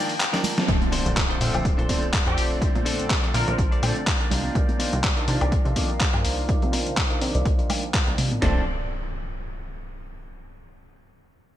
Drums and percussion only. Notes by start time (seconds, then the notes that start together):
0.09 open hi-hat, tambourine
0.20 clap, closed hi-hat, tambourine
0.34 snare, closed hi-hat, tambourine
0.44 open hi-hat, tambourine, low conga
0.57 snare, tambourine, high conga
0.68 kick, closed hi-hat, tambourine
0.81 closed hi-hat, high conga, low conga
0.92 open hi-hat, tambourine, high conga
1.06 closed hi-hat, tambourine
1.17 kick, clap, closed hi-hat, tambourine
1.30 closed hi-hat
1.41 open hi-hat, tambourine
1.54 closed hi-hat, tambourine, high woodblock
1.65 kick, closed hi-hat, tambourine
1.79 closed hi-hat
1.89 kick, open hi-hat, tambourine, high conga
2.03 closed hi-hat, tambourine
2.13 kick, clap, closed hi-hat, tambourine
2.27 closed hi-hat, high woodblock
2.37 open hi-hat, tambourine
2.51 tambourine
2.62 kick, closed hi-hat, tambourine
2.75 closed hi-hat, high conga, low conga
2.85 open hi-hat, tambourine, high conga
2.99 closed hi-hat, tambourine
3.10 kick, clap, closed hi-hat
3.24 closed hi-hat
3.33 open hi-hat, tambourine
3.48 closed hi-hat, tambourine
3.58 kick, closed hi-hat, tambourine
3.72 closed hi-hat
3.82 open hi-hat, tambourine, low conga, high woodblock
3.96 closed hi-hat, tambourine
4.07 kick, clap, closed hi-hat
4.21 closed hi-hat
4.30 open hi-hat, tambourine, low conga
4.44 tambourine, high conga
4.55 kick, closed hi-hat, tambourine
4.68 closed hi-hat, high conga, low conga
4.79 open hi-hat, tambourine, high conga
4.93 closed hi-hat, tambourine
5.04 kick, clap, closed hi-hat
5.17 closed hi-hat
5.28 open hi-hat
5.41 closed hi-hat, high woodblock
5.52 kick, closed hi-hat
5.65 closed hi-hat
5.76 kick, open hi-hat, tambourine, high conga
5.90 closed hi-hat, tambourine
6.00 kick, clap, closed hi-hat
6.14 closed hi-hat, high woodblock
6.25 open hi-hat
6.49 kick, closed hi-hat
6.62 closed hi-hat, tambourine, high conga, low conga
6.73 open hi-hat, tambourine, high conga
6.87 closed hi-hat, tambourine
6.97 kick, clap, closed hi-hat
7.11 closed hi-hat
7.21 open hi-hat
7.35 closed hi-hat
7.46 kick, closed hi-hat
7.59 closed hi-hat
7.70 open hi-hat, tambourine, low conga, high woodblock
7.83 closed hi-hat, tambourine
7.94 kick, clap, closed hi-hat
8.07 closed hi-hat
8.18 open hi-hat, tambourine, low conga
8.31 closed hi-hat, tambourine, high conga
8.42 snare, floor tom